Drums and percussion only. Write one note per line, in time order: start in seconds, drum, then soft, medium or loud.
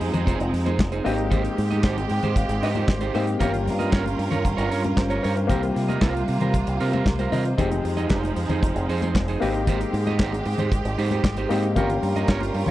0.01 open hi-hat medium
0.14 closed hi-hat soft
0.14 low conga medium
0.27 kick loud
0.27 closed hi-hat medium
0.27 muted conga soft
0.40 closed hi-hat soft
0.40 muted conga soft
0.54 open hi-hat medium
0.66 closed hi-hat soft
0.66 high conga medium
0.79 kick loud
0.79 snare medium
0.79 clap medium
0.79 muted conga soft
0.79 high conga medium
0.92 closed hi-hat soft
0.92 muted conga soft
1.06 open hi-hat medium
1.18 closed hi-hat soft
1.32 kick medium
1.32 closed hi-hat soft
1.32 low conga medium
1.45 closed hi-hat soft
1.45 muted conga soft
1.58 open hi-hat medium
1.71 closed hi-hat soft
1.71 high conga medium
1.84 kick loud
1.84 snare loud
1.84 clap medium
1.98 closed hi-hat soft
1.98 muted conga soft
1.98 high conga soft
2.09 open hi-hat medium
2.23 closed hi-hat soft
2.23 low conga medium
2.36 kick loud
2.36 closed hi-hat medium
2.36 muted conga soft
2.49 closed hi-hat soft
2.49 muted conga soft
2.63 open hi-hat medium
2.75 closed hi-hat soft
2.75 high conga medium
2.88 kick loud
2.88 snare medium
2.88 clap medium
2.88 high conga medium
3.01 closed hi-hat soft
3.01 muted conga soft
3.15 open hi-hat medium
3.27 closed hi-hat soft
3.40 kick medium
3.40 closed hi-hat medium
3.40 muted conga soft
3.40 low conga medium
3.54 closed hi-hat soft
3.68 snare soft
3.68 open hi-hat medium
3.80 closed hi-hat soft
3.80 high conga medium
3.92 kick loud
3.92 snare loud
3.92 clap medium
3.92 muted conga soft
4.06 closed hi-hat soft
4.06 muted conga soft
4.06 high conga soft
4.19 open hi-hat medium
4.31 closed hi-hat soft
4.31 low conga medium
4.45 kick loud
4.45 closed hi-hat medium
4.45 muted conga soft
4.58 closed hi-hat soft
4.58 muted conga soft
4.72 open hi-hat medium
4.84 closed hi-hat soft
4.84 high conga medium
4.97 kick loud
4.97 snare medium
4.97 clap medium
4.97 high conga medium
5.10 closed hi-hat soft
5.10 muted conga soft
5.24 open hi-hat medium
5.37 closed hi-hat soft
5.50 kick loud
5.50 closed hi-hat medium
5.50 muted conga soft
5.50 low conga medium
5.63 closed hi-hat soft
5.63 muted conga soft
5.76 snare soft
5.76 open hi-hat medium
5.89 closed hi-hat soft
5.89 high conga medium
6.02 kick loud
6.02 snare loud
6.02 clap medium
6.02 muted conga soft
6.15 closed hi-hat soft
6.15 high conga soft
6.28 open hi-hat medium
6.41 closed hi-hat soft
6.41 low conga medium
6.54 kick medium
6.54 closed hi-hat medium
6.54 muted conga soft
6.67 closed hi-hat soft
6.80 open hi-hat medium
6.93 closed hi-hat soft
6.93 high conga medium
7.06 kick loud
7.06 snare loud
7.06 clap medium
7.06 muted conga soft
7.06 high conga medium
7.19 closed hi-hat soft
7.19 muted conga soft
7.32 open hi-hat medium
7.32 low conga medium
7.45 closed hi-hat soft
7.58 kick medium
7.58 closed hi-hat medium
7.58 low conga medium
7.71 closed hi-hat soft
7.71 muted conga soft
7.85 open hi-hat medium
7.97 closed hi-hat soft
7.97 high conga medium
8.10 kick loud
8.10 snare loud
8.10 clap medium
8.10 muted conga soft
8.23 closed hi-hat soft
8.23 muted conga soft
8.23 high conga soft
8.36 open hi-hat medium
8.49 closed hi-hat soft
8.49 low conga medium
8.63 kick loud
8.63 closed hi-hat medium
8.63 muted conga soft
8.76 closed hi-hat soft
8.89 open hi-hat medium
9.02 closed hi-hat soft
9.02 high conga medium
9.15 kick loud
9.15 snare medium
9.15 clap medium
9.15 muted conga soft
9.15 high conga medium
9.28 closed hi-hat soft
9.42 open hi-hat medium
9.54 closed hi-hat soft
9.67 kick medium
9.67 closed hi-hat medium
9.67 muted conga soft
9.67 low conga medium
9.81 closed hi-hat soft
9.94 open hi-hat medium
10.07 closed hi-hat soft
10.07 high conga medium
10.19 kick loud
10.19 snare loud
10.19 clap medium
10.19 muted conga soft
10.33 closed hi-hat soft
10.33 high conga soft
10.45 open hi-hat medium
10.58 closed hi-hat soft
10.58 low conga medium
10.72 kick loud
10.72 closed hi-hat medium
10.72 muted conga soft
10.85 closed hi-hat soft
10.98 open hi-hat medium
11.11 closed hi-hat soft
11.11 high conga medium
11.24 kick loud
11.24 snare loud
11.24 clap medium
11.24 high conga medium
11.37 closed hi-hat soft
11.37 muted conga soft
11.51 open hi-hat medium
11.63 closed hi-hat soft
11.76 kick medium
11.76 closed hi-hat medium
11.76 muted conga soft
11.76 low conga medium
11.90 closed hi-hat soft
12.03 open hi-hat medium
12.15 closed hi-hat soft
12.15 high conga medium
12.28 kick loud
12.28 snare loud
12.28 clap medium
12.28 muted conga soft
12.41 closed hi-hat medium
12.41 muted conga soft
12.41 high conga soft
12.54 open hi-hat medium
12.66 closed hi-hat soft
12.66 low conga medium